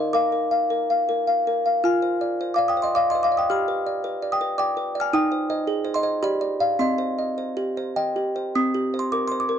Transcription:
Already playing: D#4 A#4 D#5 C6
0.13 A#4 F5 D6
0.32 A#4
0.51 F5
0.70 A#4
0.90 F5
1.09 A#4
1.27 F5
1.47 A#4
1.66 F5
1.84 F4 G#5 F6
2.02 C5
2.21 D5
2.41 C5
2.54 F5 D6
2.59 D5
2.68 G5 D#6
2.77 C5
2.82 D#5 C6
2.95 D5 F5 D6
3.10 D#5 C6
3.15 C5
3.23 F5 D6
3.32 D5
3.37 G5 D#6
3.50 G4 B5 F6
3.68 B4
3.87 D5
4.04 B4
4.22 D5
4.32 G5 D#6
4.41 B4
4.58 D5 G5 D6
4.77 B4
4.95 D5
5.00 G#5 F6
5.13 D#4 G5 D#6
5.32 C5
5.50 C5 D#5
5.67 G#4
5.85 C5
5.94 D#5 C6
6.03 C5 D#5
6.23 G4 D5 B5
6.41 D5
6.60 D5 F5
6.79 C4 D#5 C6
6.98 C5
7.18 D#5
7.38 C5
7.57 G4
7.77 C5
7.96 D#5 G5
8.16 G4
8.36 C5
8.55 C4 D#6
8.74 G4
8.94 C5
8.99 C6
9.12 A#4 D6
9.27 C6
9.32 C5
9.40 D6
9.49 A#4

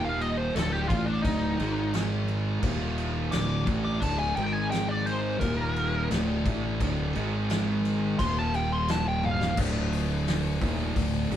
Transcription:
Already playing: D#1 D#2 A#2 D#3 A#3 F4
0.05 F5
0.21 D#5, crash
0.37 C5
0.53 D1 D2 A2 A3 A4 D5, snare, crash
0.57 D3
0.72 G4
0.88 A1 A2 F4, kick, crash
0.92 E3 A3
1.05 D4
1.22 D1 D2 D#4, kick, crash
1.26 A2 D3
1.59 G#1 G#2 D#3 G#3 D#4 A#4, crash
1.94 snare, crash
2.28 crash
2.63 D#1 D#2 A#2 D#3 A#3 F4, kick, crash
2.98 crash
3.32 D1 D2 A2 D3 A3 D4 D6, snare, crash
3.67 A1 A2 E3 A3, kick, crash
3.84 D6
4.00 D1 D2 A2 D3 A5, kick, crash
4.19 G#5
4.36 G#1 G#2 D#3 G#3 D#4 A#4 G5, crash
4.53 G#5
4.71 G5, snare, crash
4.88 D5
5.06 C5, crash
5.40 D#1 D#2 A#2 D#3 A#3 F4 A#4, kick, crash
5.76 crash
6.10 D1 D2 A2 D3 A3 D4, snare, crash
6.46 A1 A2 E3 A3, kick, crash
6.80 D1 D2 A2 D3, kick, crash
7.15 G#1 G#2 D#3 G#3 D#4 A#4, crash
7.50 snare, crash
7.85 crash
8.19 D#1 D#2 A#2 D#3 A#3 F4 C6, kick, crash
8.38 A5
8.54 G5, crash
8.72 C6
8.88 A5, snare, crash
9.08 G5
9.23 F5, high tom
9.41 snare
9.57 D1 D2 A2 D3 F3 A3 D4, kick, crash
9.93 open hi-hat
10.27 snare, open hi-hat
10.62 D#1 D#2 A#2 D#3, kick, open hi-hat
10.96 D1 D2 A2 D3, kick, open hi-hat
11.31 G1 G2 D3 G3, open hi-hat

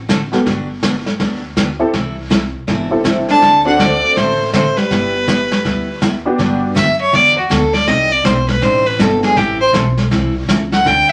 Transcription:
Already playing: A1
0.09 D3 A3 C4 F#4 A4, kick, snare, hi-hat pedal
0.32 B3 F#4 G4 A4, snare
0.46 G1 D3 F#3 B3 D4 G4, brush sweep, kick, snare
0.83 D3 F#3 B3 D4 G4, kick, snare, hi-hat pedal
1.06 snare
1.20 D2 D3 F#3 B3 D4 G4, brush sweep, kick, snare
1.56 D3 F#3 B3 D4 G4, kick, snare, hi-hat pedal
1.79 C4 E4 G4 A4
1.93 C2 C3 E3 G3 C4 E4 A4, brush sweep, kick, snare
2.30 C3 E3 G3 C4 E4 A4, kick, snare, hi-hat pedal
2.67 G1 C3 E3 G3 C4 E4 A4, brush sweep, kick, snare
2.91 C4 E4 G4 A4
3.04 C3 E3 G3 C4 E4 A4, kick, snare, hi-hat pedal
3.29 D4 A5, snare
3.42 D2 D3 A3 C4 F#4 A4, brush sweep, kick, snare
3.65 C4 D4 F#4 A4 F#5
3.78 D3 A3 C4 F#4 A4 D5, kick, snare, hi-hat pedal
4.16 A1 D3 A3 C4 F#4 A4 C5, brush sweep, kick, snare
4.53 D3 A3 C4 F#4 A4 C5, kick, snare, hi-hat pedal
4.77 G3 B4, snare
4.90 G1 G3 B3 E4 G4, brush sweep, kick, snare
5.27 G3 B3 E4 G4, kick, snare, hi-hat pedal
5.52 snare
5.64 D2 G3 B3 E4 G4, brush sweep, kick, snare
6.01 G3 B3 E4 G4, kick, snare, hi-hat pedal
6.25 B3 D4 F#4 G4
6.38 G2 D3 F#3 B3 D4 G4, brush sweep, kick, snare
6.74 F#2 D3 F#3 B3 D4 G4 E5, kick, snare, hi-hat pedal
7.01 C#5
7.12 E2 D3 F#3 B3 D4 G4 D5, brush sweep, kick, snare
7.38 F#4
7.49 D2 D3 F#3 B3 D4 G4 A4, kick, snare, hi-hat pedal
7.74 D5, snare
7.87 C2 C3 G3 C4 D#4 G4 D5 D#5, brush sweep, kick, snare
8.12 D5
8.24 B1 C3 G3 C4 D#4 G4 C5 D5, kick, snare, hi-hat pedal
8.48 B4, snare
8.61 A1 C3 G3 C4 D#4 G4 C5 D5, brush sweep, kick, snare
8.86 B4
8.99 G1 C3 G3 C4 D#4 G4 A4 D5, kick, snare, hi-hat pedal
9.23 G#4, snare
9.36 A1 E3 G3 C4 E4 G4 A4, brush sweep, kick, snare
9.60 C5
9.72 B1 E3 G3 C4 E4 A4, kick, snare, hi-hat pedal
9.97 snare
10.11 C2 E3 G3 C4 E4 A4, brush sweep, kick, snare
10.48 C#2 E3 G3 C4 E4 A4, kick, snare, hi-hat pedal
10.72 F#5, snare
10.84 D2 D3 G3 C4 D4 G4 G5, brush sweep, kick, snare

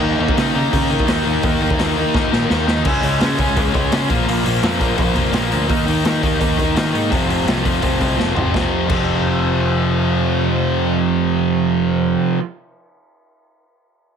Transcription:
0.01 D#2 D#3 A#3 D#4
0.20 D#2 D#3 A#3 D#4
0.28 kick
0.37 C#3 D#3 A#3 D#4, snare, open hi-hat
0.55 C#3 D#3 A#3 D#4
0.72 C#3 D#3 A#3 D#4, kick, open hi-hat
0.90 D#3 A#3 D#4
1.00 kick
1.08 D#2 D#3 A#3 D#4, snare, open hi-hat
1.26 D#2 D#3 A#3 D#4
1.43 D#2 D#3 A#3 D#4, kick, open hi-hat
1.61 D#2 D#3 A#3 D#4
1.70 kick
1.79 D#2 D#3 A#3 D#4, snare, open hi-hat
1.97 D#3 A#3 D#4
2.14 D#2 D#3 A#3 D#4, kick, snare
2.32 A#2 D#3 A#3 D#4, snare
2.50 D#2 D#3 A#3 D#4, snare
2.68 D#3 A#3 D#4, snare
2.85 C#2 C#3 G#3 C#4, kick, crash
3.03 C#2 C#3 G#3 C#4, open hi-hat
3.21 C#3 G#3 C#4, snare, open hi-hat
3.38 C#2 C#3 G#3 C#4, kick, open hi-hat
3.56 C#2 C#3 G#3 C#4, kick, open hi-hat
3.74 C#2 C#3 G#3 C#4, kick, open hi-hat
3.92 C#3 G#3 C#4, snare, open hi-hat
4.09 A#1 A#2 F3 A#3, kick, open hi-hat
4.27 A#1 A#2 F3 A#3, open hi-hat
4.45 A#1 A#2 F3 A#3, open hi-hat
4.63 F2 A#2 F3 A#3, snare, open hi-hat
4.81 A#1 A#2 F3 A#3, kick, open hi-hat
4.98 A#1 A#2 F3 A#3, kick, open hi-hat
5.15 F1 A#2 F3 A#3, kick, open hi-hat
5.33 A#1 A#2 F3 A#3, snare, open hi-hat
5.52 D2 A#2 F3 A#3, open hi-hat
5.69 D#2 D#3 A#3 D#4, kick, open hi-hat
5.88 D#2 D#3 A#3 D#4, open hi-hat
6.05 D#3 A#3 D#4, snare, open hi-hat
6.22 D#2 D#3 A#3 D#4, kick, open hi-hat
6.41 D#2 D#3 A#3 D#4, kick, open hi-hat
6.59 D#2 D#3 A#3 D#4, kick, open hi-hat
6.77 D#3 A#3 D#4, snare, open hi-hat
6.94 G#2 D#3 A#3 D#4, open hi-hat
7.11 F1 F2 C3 F3, kick, open hi-hat
7.29 F1 F2 C3 F3, open hi-hat
7.47 C2 F2 C3 F3, snare, open hi-hat
7.64 F1 F2 C3 F3, kick, open hi-hat
7.82 F1 F2 C3 F3, kick, open hi-hat
8.00 C2 F2 C3 F3, kick, open hi-hat
8.17 F1 F2 C3 F3, snare
8.36 G#1 F2 C3 F3, floor tom
8.52 F1 F2 C3, kick, snare
8.56 F3
8.88 F1 F2 C3 F3, kick, crash

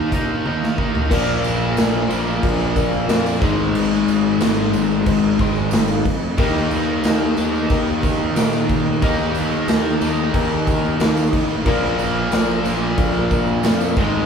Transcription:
Already playing: D#3 A#3 D#4
0.12 A#2 D#3 A#3 D#4, kick, closed hi-hat
0.46 D#2 D#3 A#3 D#4, high tom
0.63 snare
0.78 A1 D#3 A#3 D#4, kick
0.95 floor tom
1.10 A#1 A#2 F3 A#3 F4 A#4 D5, kick, crash, tambourine
1.43 A#1, tambourine, crash
1.77 A#1 F4 A#4 D5, snare, tambourine, crash
2.09 A#1 A#2 F3 A#3, tambourine, crash
2.27 tambourine
2.42 A#1 F4 A#4 D5, kick, crash
2.60 tambourine
2.75 F4 A#4 D5, kick, tambourine, crash
2.93 tambourine
3.08 F2 A#2 F3 A#3 F4 A#4 D5, snare, tambourine, crash
3.26 tambourine
3.40 G#1 G#2 D#3 G#3 G#4 C5 D#5, kick, snare, crash
3.75 G#1, tambourine, crash
3.92 snare
4.07 G#1, tambourine, crash
4.39 G#1 G#2 D#3 G#3 G#4 C5 D#5, snare, tambourine, crash
4.73 G#1, tambourine, crash
4.90 tambourine
5.06 G#1 G#4 C5 D#5, kick, crash
5.23 tambourine
5.39 G#2 D#3 G#3 G#4 C5 D#5 C6, kick, crash
5.56 G#5, tambourine
5.71 G#1 G#4 C5 G5, snare, tambourine, crash
5.75 D#5
5.88 F5, tambourine
6.05 F2 D#5, kick, snare, crash
6.37 D#2 D#3 A#3 D#4 G4 A#4 D#5, kick, tambourine, crash
6.56 snare
6.71 D#2, tambourine, crash
7.04 D#2 G4 A#4 D#5, snare, tambourine, crash
7.37 D#2 D#3 A#3 D#4, tambourine, crash
7.55 tambourine
7.70 D#2 G4 A#4 D#5, kick, crash
7.88 tambourine
8.03 G4 A#4 D#5, kick, tambourine, crash
8.36 A#2 D#3 A#3 D#4 G4 A#4 D#5, snare, tambourine, crash
8.53 tambourine
8.69 kick, crash
9.02 D#2 D#3 A#3 D#4 G4 A#4 D#5, kick, tambourine, crash
9.19 tambourine
9.34 D#2, tambourine, crash
9.52 tambourine
9.67 D#2 G4 A#4 D#5, snare, tambourine, crash
9.85 tambourine
10.01 D#2 D#3 A#3 D#4 A5, tambourine, crash
10.18 G5
10.34 D#2 G4 A#4 D#5 A#5, kick, tambourine, crash
10.51 tambourine
10.67 G4 A#4 D#5 G5, kick, tambourine, crash
10.85 tambourine
10.99 D#2 D#3 A#3 D#4 G4 A#4 D#5 F5, snare, tambourine, crash
11.17 tambourine
11.33 A1 D#5, kick, snare, crash
11.49 tambourine
11.66 A#1 A#2 F3 A#3 F4 A#4 D5, kick, tambourine, crash
11.84 snare
11.99 A#1, tambourine, crash
12.31 A#1 F4 A#4 D5, snare, tambourine, crash
12.64 A#1 A#2 F3 A#3, tambourine, crash
12.81 tambourine
12.98 A#1 F4 A#4 D5, kick, crash
13.14 tambourine
13.31 F4 A#4 D5, kick, tambourine, crash
13.47 tambourine
13.63 F2 A#2 F3 A#3 F4 A#4 D5, snare, tambourine, crash
13.80 tambourine
13.96 G#1 G#2 D#3 G#3 G#4 C5 D#5, kick, snare, crash

